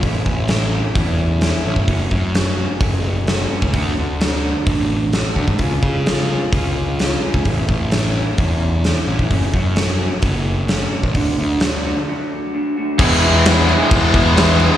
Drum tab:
CC |----------------|----------------|----------------|----------------|
HH |o---o---o---o---|o---o---o---o---|o---o---o---o---|o---o---o---o---|
SD |----o-------o---|----o-------o---|----o-------o---|----o-------o---|
BD |o-o-----o------o|o-o-----o------o|o-------o-----oo|o-o-----o------o|

CC |----------------|----------------|----------------|x-x-x-x-x-x-x-x-|
HH |o---o---o---o---|o---o---o---o---|o---o-----------|----------------|
SD |----o-------o---|----o-------o---|----o-----------|----o-------o---|
BD |o-o-----o------o|o-o-----o------o|o---------------|o-------o-o-----|